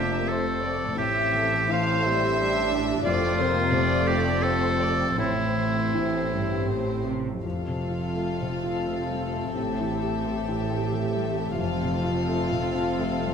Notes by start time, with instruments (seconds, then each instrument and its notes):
Already playing: double bass section F1, grand piano F2 C3, cello section F2, harp F2 C3 A3 F4 C5, viola section A#3 D4, oboe G4, violin section E5
0.27 viola section A3 C4, oboe A4, harp C5, violin section C5
0.61 harp A3, violin section D5
0.96 double bass section A1, harp A2, grand piano A2, cello section A2, viola section C4, oboe G4, violin section E5
1.33 harp E3, viola section A3
1.69 grand piano E3, harp A3, viola section A3, oboe C5, violin section F5
2.04 viola section G3, harp G4, violin section E5
2.38 viola section G3 D4, harp C5
2.71 harp A3
3.05 double bass section F1, cello section F2, harp F2, grand piano F2, viola section A3 C4, oboe F4, violin section D5
3.39 harp C3, viola section A#3, violin section C5
3.71 grand piano C3, harp A3, viola section A3 C4, violin section D5
4.07 harp F4, oboe G4
4.43 viola section A3, oboe A4, harp C5, violin section C5
4.80 harp A3, violin section D5
5.18 double bass section A1, harp A2, grand piano A2, cello section A2, viola section C4, oboe E4, violin section C5
5.56 harp E3
5.95 cello section A2, grand piano E3, harp A3
6.33 cello section G2, harp G4
6.69 cello section A2, harp C5
7.07 cello section C3, harp A3
7.44 double bass section F1, cello section F2, grand piano F2, harp F2, viola section C4 F4, violin section A4 F5
7.68 grand piano C3
7.79 harp A3
7.91 grand piano F4
8.15 grand piano A3, harp C5
8.41 grand piano C3
8.51 harp F4
8.64 grand piano F4
8.86 harp C3, grand piano A3
9.10 grand piano G3
9.21 harp A3
9.33 grand piano A3
9.55 double bass section A1, cello section A2, grand piano A2, harp A2, viola section G4, violin section E5
9.81 grand piano E3
9.91 harp A3
10.02 grand piano G4
10.24 grand piano A3, harp C5
10.48 grand piano E3
10.58 harp G4
10.71 grand piano G4
10.91 harp E3, grand piano A3
11.15 grand piano G3
11.27 harp A3
11.38 grand piano A3
11.59 double bass section F1, grand piano F2, harp F2, cello section F2, viola section C4 F4, violin section A4 F5
11.83 grand piano C3
11.95 harp A3
12.04 grand piano F4
12.29 grand piano A3, harp C5
12.52 grand piano C3
12.63 harp F4
12.74 grand piano F4
12.99 harp C3, grand piano A3
13.23 grand piano G3